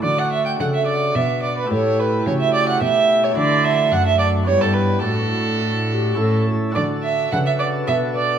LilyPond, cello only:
\new Staff \with { instrumentName = "Cello" } { \clef bass \time 3/4 \key d \major \tempo 4 = 108 d4 cis4 b,4 | a,4 cis4 b,4 | d4 fis,4 g,4 | a,2 a,8 r8 |
d4 cis4 b,4 | }